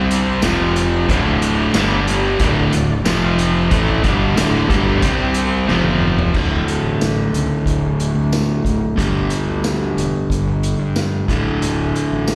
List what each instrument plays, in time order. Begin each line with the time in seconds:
Already playing: fingered electric bass C2, overdriven electric guitar C3 G3 C4, tonewheel organ C4 G4 C5
0.11 closed hi-hat
0.40 fingered electric bass F1, overdriven electric guitar F2 F3, tonewheel organ C4 F4 C5, snare, closed hi-hat, tambourine
0.44 overdriven electric guitar C3
0.76 closed hi-hat
1.07 fingered electric bass D1, overdriven electric guitar D2 A2 D3, tonewheel organ A3 D4 F#4 D5, kick, closed hi-hat
1.42 closed hi-hat
1.73 fingered electric bass G1, overdriven electric guitar G2 D3 G3, tonewheel organ D4 G4 D5, snare, closed hi-hat, tambourine
2.07 closed hi-hat
2.39 fingered electric bass D1, overdriven electric guitar D2 A2 D3, tonewheel organ A3 D4 F#4 D5, kick, closed hi-hat
2.73 fingered electric bass D1, overdriven electric guitar D2 A2, closed hi-hat
3.05 fingered electric bass F1, overdriven electric guitar F2 C3 F3, tonewheel organ C5, snare, closed hi-hat, tambourine
3.10 tonewheel organ C4 F4
3.39 closed hi-hat
3.71 fingered electric bass A1, overdriven electric guitar A2 E3 A3, tonewheel organ A3 F#4 D5, kick, closed hi-hat
3.75 tonewheel organ D4
4.04 fingered electric bass G1, overdriven electric guitar G2 D3 G3, kick, closed hi-hat
4.36 fingered electric bass D1, overdriven electric guitar D2 A2 D3, snare, closed hi-hat, tambourine
4.69 fingered electric bass G1, overdriven electric guitar G2 D3 G3, kick, closed hi-hat
5.02 fingered electric bass C2, overdriven electric guitar C3 G3 C4, tonewheel organ C4 G4 C5, kick, closed hi-hat
5.34 closed hi-hat
5.68 fingered electric bass F1, overdriven electric guitar F2 C3 F3, tonewheel organ C4 F4 C5, snare
5.84 high tom
6.02 mid tom
6.18 floor tom
6.33 fingered electric bass D1, overdriven electric guitar D2 A2 D3, kick, crash
6.68 closed hi-hat
6.84 fingered electric bass A1
7.01 snare, closed hi-hat, tambourine
7.33 fingered electric bass C#2, closed hi-hat
7.66 fingered electric bass D1, kick, closed hi-hat
8.00 closed hi-hat
8.15 fingered electric bass D2
8.33 snare, closed hi-hat, tambourine
8.65 fingered electric bass D1, kick, closed hi-hat
8.96 fingered electric bass G1, overdriven electric guitar G2 D3 G3, kick, closed hi-hat
9.30 closed hi-hat
9.46 fingered electric bass D2
9.64 snare, closed hi-hat, tambourine
9.96 fingered electric bass E1, closed hi-hat
10.30 fingered electric bass G1, kick, closed hi-hat
10.63 closed hi-hat
10.79 fingered electric bass G2
10.96 snare, closed hi-hat, tambourine
11.28 fingered electric bass D1, overdriven electric guitar D2 A2 D3, kick, closed hi-hat
11.62 fingered electric bass D1, closed hi-hat
11.96 closed hi-hat
12.12 fingered electric bass A1
12.28 snare, closed hi-hat, tambourine